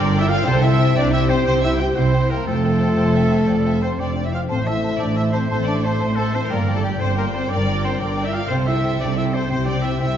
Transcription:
Already playing: G1 G2 D3 D4 G4 A#4 D5 G5
0.03 A#5
0.11 D5 G5
0.18 E4 D5 E5
0.27 F4 A#4 D5 F5 G5
0.36 G4
0.44 C2 C3 C4 A4 C5 G5
0.54 G3
0.61 C4 E4 C5 E5 G5
0.69 G4
0.78 C5 G5
0.87 G4
0.94 C2 C3 D4 G4 C5 D5 G5
1.04 C6
1.12 E4 C5 E5 G5
1.21 C5
1.28 C4 G4 C5 G5
1.37 C4
1.44 C2 C3 C5
1.48 C4 G5
1.54 G3
1.61 E4 C5 E5 G5
1.70 G4
1.78 C5 G5
1.83 G4
1.87 G4
1.94 C2 C3 C4 E4 C5 G5
1.99 G5
2.04 C6
2.12 C5 G5
2.21 C5
2.29 A#3 G4 A#4 C5 G5
2.38 C4
2.46 F1 F2 A3 F4 A4 C5 G5
2.54 C3
2.63 C4 C5 G5
2.72 G4
2.80 C5 G5
2.88 G4
2.96 F1 F2 C5 G5
3.05 C6
3.13 C5 E5 G5
3.23 C5
3.31 G4 C5 G5
3.40 C4
3.47 F1 F2 C5 D5 G5
3.58 C3
3.64 C4 C5 E5 G5
3.75 G4
3.82 C4 C5 G5
3.91 G4
3.98 F1 F2 D4 C5 D5 G5
4.08 C6
4.15 C5 D5 G5
4.25 E4 C5 E5
4.33 F4 G4 C5 F5 G5
4.42 C4
4.49 A1 A2 C4 C5 A5
4.58 E3
4.66 C4 E4 C5 E5 A5
4.75 E4
4.83 C5 A5
4.93 E4
4.99 A1 A2 D4 C5 D5 A5
5.09 C6
5.16 E4 C5 E5 A5
5.26 C5
5.31 C4 E4 C5 A5
5.42 C4
5.49 A1 A2 C4 A4 C5 A5
5.59 E3
5.66 C4 D4 C5 D5 E5 A5
5.76 E4
5.82 C4 C5 A5
5.92 E4
6.00 A1 A2 C5 E5 A5
6.15 A3 A4 C5 E5 A5
6.33 C4 E4 C5 A5
6.44 C4
6.50 G1 G2 A#3 A#4 D5 G5
6.60 D3
6.67 G3 D5 G5
6.73 A3 G4 A4
6.83 G3 G4 D5 G5
6.93 G4
6.99 G1 G2 C4 C5 D5 G5
7.09 D6
7.16 A#3 A#4 D5 G5
7.26 G4
7.33 C4 C5 D5 G5
7.42 G4
7.50 G1 G2 D4 A#4 D5 G5
7.58 D3
7.67 G3 D5 G5
7.75 G4
7.82 C4 C5 D5 G5
7.91 G4
7.99 G1 G2 D4 A#4 D5 G5
8.09 D6
8.16 D5 G5
8.24 E4 G4 E5
8.32 F4 D5 F5 G5
8.41 G4
8.48 C2 C3 C4 A4 C5 G5
8.58 C4
8.65 G3 E4 C5 E5 G5
8.75 G4
8.84 C5 G5
8.91 G4
9.00 C2 C3 D4 C5 D5 G5
9.08 C6
9.16 E4 C5 E5 G5
9.25 G4
9.33 C4 C5 G5
9.41 G4
9.48 C2 C3 C4 G4 C5 G5
9.59 C4
9.65 G3 D4 C5 D5 G5
9.74 G4
9.82 E4 C5 E5 G5
9.92 G4
9.98 C2 C3 E4 G4 C5 E5 G5
10.08 C6

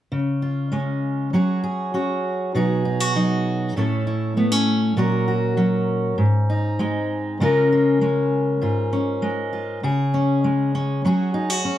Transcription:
0.12 C#3
0.42 F4
0.72 G#3 C#4
1.33 F#3 C#4 F#4 G#4
1.64 G#4
1.94 C#4 F#4
2.55 B2 F#3 D#4 F#4 G#4
2.85 D#4
3.00 F#4
3.16 F#3 D#4
3.76 A2 A3 C#4 E4 A4
4.07 E4
4.37 A3 B3
4.52 C#4
4.97 A#2 F#3 C#4 F#4 A#4
5.28 F#4
5.57 F#3 C#4
6.18 G#2
6.50 D#4
6.79 G#3 C4
7.40 C#3 G#3 C#4 F4 A#4
7.72 F4
8.01 G#3 C#4
8.61 G#2 F4
8.93 C#4
9.22 G#3
9.53 F4
9.83 C#3 G#4
10.14 C#4
10.44 G#3
10.75 C#4
11.05 F#3 C#4 F#4 G#4
11.34 D#4
11.50 F#4
11.65 C#4

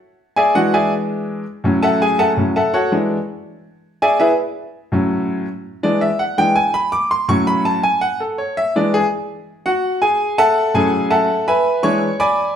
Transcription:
0.36 G#4 D5 E5 G#5
0.55 E3 G#3 D4 F#4 F#5
0.74 G#4 D5 E5 G#5
1.64 A2 F#3 C#4
1.83 A4 E5 F#5 A5
2.02 G#4 G#5
2.19 A4 E5 F#5 A5
2.37 A2 F#3 C#4
2.56 A4 E5 F#5 A5
2.74 F#4 A4 C#5 F#5
2.92 E3 G#3 D4
4.02 G#4 D5 E5 G#5
4.20 E4 G#4 B4 E5
4.92 A2 F#3 C#4
5.83 E3 G#3 D4 D5
6.01 E5
6.19 F#5
6.38 E3 G#3 D4 G5
6.56 G#5
6.74 B5
6.92 D6
7.11 C6
7.28 A2 F#3 C#4 C#6
7.47 B5
7.65 A5
7.83 G#5
8.01 F#5
8.20 A4
8.38 C#5
8.57 E5
8.76 E3 G#3 D4 D5
8.94 G#4
9.66 F#4 F#5
10.02 G#4 G#5
10.38 A4 E5 F#5 A5
10.74 A2 F#3 C#4 G#4 G#5
11.10 A4 E5 F#5 A5
11.48 B4 E5 G#5 B5
11.83 E3 G#3 D4 C#5 C#6
12.20 D5 G#5 B5 D6

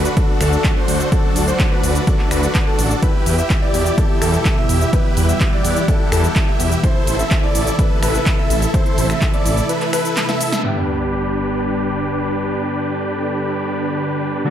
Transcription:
Already playing: D3 F#3 A3 D4 F#4 A4 B4
0.05 closed hi-hat, shaker
0.17 D4 F#4 A4, kick, closed hi-hat, ride, shaker
0.41 D2 D4 F#4 A4, finger snap, open hi-hat, ride, shaker
0.53 closed hi-hat, shaker
0.64 kick, clap, closed hi-hat, ride, shaker
0.76 D4 F#4 C5
0.88 D2, open hi-hat, ride, shaker
1.00 closed hi-hat, shaker
1.12 D4 E4 F#4 A4, kick, closed hi-hat, ride, shaker
1.36 D2, open hi-hat, ride, shaker
1.48 D4 F#4 C5, closed hi-hat, shaker
1.59 kick, clap, closed hi-hat, ride, shaker
1.72 D4 F#4 B4
1.83 D2, open hi-hat, ride, shaker
1.95 closed hi-hat, shaker
2.07 D4 F#4 A4, kick, closed hi-hat, ride, shaker
2.19 clap
2.31 D2 D4 F#4 B4, finger snap, open hi-hat, ride, shaker
2.43 closed hi-hat, shaker
2.55 kick, clap, closed hi-hat, ride, shaker
2.67 D4 F#4 A4
2.79 A1, open hi-hat, ride, shaker
2.91 closed hi-hat, shaker
3.02 B2 E3 G3 E4 G4 B4, kick, closed hi-hat, ride, shaker
3.26 E2, open hi-hat, ride, shaker
3.38 E4 G4 E5, closed hi-hat, shaker
3.50 kick, clap, closed hi-hat, ride, shaker
3.62 E4 G4 D5
3.74 E2, open hi-hat, ride, shaker
3.86 closed hi-hat, shaker
3.98 E4 G4 A4, kick, closed hi-hat, ride, shaker
4.22 E2 E4 G4 A4, finger snap, open hi-hat, ride, shaker
4.34 closed hi-hat, shaker
4.45 kick, clap, closed hi-hat, ride, shaker
4.57 E4 G4 E5
4.69 E2, open hi-hat, ride, shaker
4.81 closed hi-hat, shaker
4.93 E4 G4 B4 F#5, kick, closed hi-hat, ride, shaker
5.17 E2, open hi-hat, ride, shaker
5.29 E4 G4 E5, closed hi-hat, shaker
5.40 kick, clap, closed hi-hat, ride, shaker
5.53 E4 G4 D5
5.64 E2, open hi-hat, ride, shaker
5.76 closed hi-hat, shaker
5.88 E4 G4 A4, kick, closed hi-hat, ride, shaker
6.12 E2 E4 G4 A4, finger snap, open hi-hat, ride, shaker
6.24 closed hi-hat, shaker
6.36 kick, clap, closed hi-hat, ride, shaker
6.48 E4 G4 E5
6.60 E2, open hi-hat, ride, shaker
6.72 closed hi-hat, shaker
6.83 C3 A3 E4 A4 C5, kick, closed hi-hat, ride, shaker
7.07 A1, open hi-hat, ride, shaker
7.19 E4 A4 E5, closed hi-hat, shaker
7.31 kick, clap, closed hi-hat, ride, shaker
7.43 E4 A4 D5
7.55 A1, open hi-hat, ride, shaker
7.67 closed hi-hat, shaker
7.79 E4 A4 B4, kick, closed hi-hat, ride, shaker
8.03 A1 E4 A4 B4, finger snap, open hi-hat, ride, shaker
8.15 closed hi-hat, shaker
8.26 kick, clap, closed hi-hat, ride, shaker
8.38 E4 A4 E5
8.50 A1, open hi-hat, ride, shaker
8.62 closed hi-hat, shaker
8.74 E4 A4 C5, kick, closed hi-hat, ride, shaker
8.86 closed hi-hat
8.98 A1, open hi-hat, ride, shaker
9.10 E4 A4 E5, finger snap, closed hi-hat, shaker
9.22 kick, clap, closed hi-hat, ride, shaker
9.33 E4 A4 D5, closed hi-hat
9.45 A1, open hi-hat, ride, shaker
9.57 closed hi-hat, shaker
9.69 E4 A4 B4, closed hi-hat, ride, shaker
9.81 clap, closed hi-hat
9.93 E4 A4 B4, finger snap, open hi-hat, ride, shaker
10.05 closed hi-hat, shaker
10.17 snare, clap, closed hi-hat, ride, shaker
10.29 E4 A4 E5, snare, closed hi-hat
10.41 open hi-hat, ride, shaker
10.52 snare, closed hi-hat, shaker
10.63 G2 D3 G3 B3 D4 G4 B4, sub drop
10.88 closed hi-hat
11.00 closed hi-hat
11.12 closed hi-hat
11.36 closed hi-hat
11.48 closed hi-hat
11.60 closed hi-hat
11.72 closed hi-hat
11.84 closed hi-hat
11.95 closed hi-hat
12.07 closed hi-hat
12.19 closed hi-hat
12.31 closed hi-hat
12.43 closed hi-hat
12.55 A4, closed hi-hat
12.79 closed hi-hat
12.91 closed hi-hat
13.03 closed hi-hat
13.26 closed hi-hat
13.38 closed hi-hat
13.50 closed hi-hat
13.62 closed hi-hat
13.74 closed hi-hat
13.86 closed hi-hat
13.98 closed hi-hat
14.10 closed hi-hat
14.22 closed hi-hat
14.34 closed hi-hat
14.44 D3 F#3 A3 D4 F#4 A4, closed hi-hat

